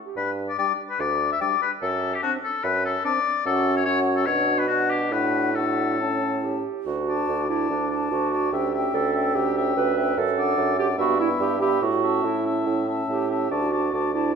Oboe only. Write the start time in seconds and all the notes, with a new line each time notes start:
0.17 B4
0.49 D5
0.58 D5
0.90 B4
1.00 D5
1.32 E5
1.41 D5
1.62 B4
1.82 A4
2.14 G4
2.23 F#4
2.44 A4
2.64 B4
2.85 A4
3.05 D5
3.46 A4
3.77 C#5
3.85 C#5
4.16 A4
4.26 C#5
4.59 B4
4.68 F#4
4.90 G4
5.12 B4
5.55 A4
7.08 D5
7.49 D5
7.90 D5
8.33 D5
8.53 E5
8.74 E5
9.15 E5
9.57 E5
9.97 E5
10.38 D5
10.78 D5
10.98 E5
11.19 E5
11.61 E5
12.03 E5
12.46 E5
12.88 E5
13.31 E5
13.51 D5
13.73 D5
13.94 D5
14.13 D5